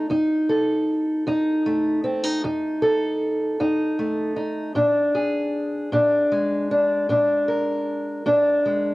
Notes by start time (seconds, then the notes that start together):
0.10 F2 D#4
0.49 A4
1.27 F2 D#4
1.66 A3
2.04 C4
2.23 D#4
2.44 F2 D#4
2.82 A4
3.60 F2 D#4
3.99 A3
4.36 D#4
4.75 A#2 D4
5.15 G#4
5.92 A#2 D4
6.32 G#3
6.71 D4
7.09 A#2 D4
7.48 A#4
8.26 A#2 D4
8.66 G#3